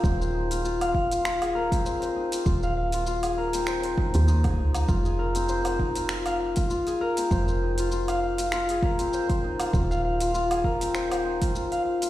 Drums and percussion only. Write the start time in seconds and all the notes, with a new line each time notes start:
0.04 kick, shaker
0.22 shaker
0.51 open hi-hat, shaker
0.65 shaker
0.81 open hi-hat, low woodblock, shaker
0.95 kick
1.12 open hi-hat, shaker
1.25 finger snap, shaker
1.42 open hi-hat, low woodblock, shaker
1.72 kick, open hi-hat, shaker
1.86 shaker
2.02 open hi-hat, shaker
2.32 open hi-hat, shaker
2.46 kick, shaker
2.63 shaker
2.92 open hi-hat, shaker
3.07 shaker
3.23 open hi-hat, low woodblock, shaker
3.53 open hi-hat, shaker
3.67 finger snap, shaker
3.83 open hi-hat, shaker
3.98 kick
4.14 open hi-hat, shaker
4.28 shaker
4.44 kick, open hi-hat, low woodblock, shaker
4.74 open hi-hat, low woodblock, shaker
4.89 kick, shaker
5.05 shaker
5.35 open hi-hat, shaker
5.49 shaker
5.65 open hi-hat, low woodblock, shaker
5.79 kick
5.96 open hi-hat, shaker
6.09 finger snap, shaker
6.26 open hi-hat, low woodblock, shaker
6.56 kick, open hi-hat, shaker
6.70 shaker
6.87 open hi-hat, shaker
7.17 open hi-hat, shaker
7.31 kick, shaker
7.48 shaker
7.78 open hi-hat, shaker
7.92 shaker
8.08 open hi-hat, low woodblock, shaker
8.38 open hi-hat, shaker
8.52 finger snap, shaker
8.69 open hi-hat, shaker
8.83 kick
8.99 open hi-hat, shaker
9.13 shaker
9.30 kick, open hi-hat, shaker
9.60 open hi-hat, low woodblock, shaker
9.73 kick, shaker
9.91 shaker
10.21 open hi-hat, shaker
10.35 shaker
10.51 open hi-hat, low woodblock, shaker
10.64 kick
10.81 open hi-hat, shaker
10.95 finger snap, shaker
11.12 open hi-hat, low woodblock, shaker
11.42 kick, open hi-hat, shaker
11.55 shaker
11.72 open hi-hat, shaker
12.02 open hi-hat, shaker